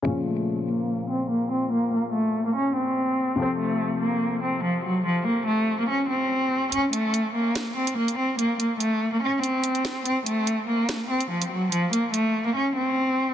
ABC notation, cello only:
X:1
M:4/4
L:1/16
Q:1/4=144
K:Bbm
V:1 name="Cello"
D2 =A,4 B,4 C2 B,2 C2 | B,2 B,2 =A,3 B, D2 C6 | C2 =A,4 B,4 C2 F,2 G,2 | F,2 B,2 =A,3 B, D2 C6 |
D2 =A,4 B,4 C2 B,2 C2 | B,2 B,2 =A,3 B, D2 C6 | C2 =A,4 B,4 C2 F,2 G,2 | F,2 B,2 =A,3 B, D2 C6 |]